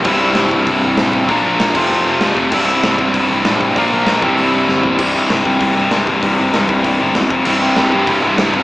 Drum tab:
CC |x-------|---x----|x-------|--------|
HH |--o-o-o-|o-o---o-|--o-o-o-|o-o-o---|
SD |--o---o-|--o---o-|--o---o-|--o---o-|
FT |--------|--------|--------|-------o|
BD |o--oo--o|o--o---o|o--oo--o|o--o----|

CC |x-------|--------|x-------|
HH |--o-o-o-|o-o-o-o-|--o-o-o-|
SD |--o---o-|--o---o-|--o---o-|
FT |--------|--------|--------|
BD |o--oo--o|o--oo--o|---oo--o|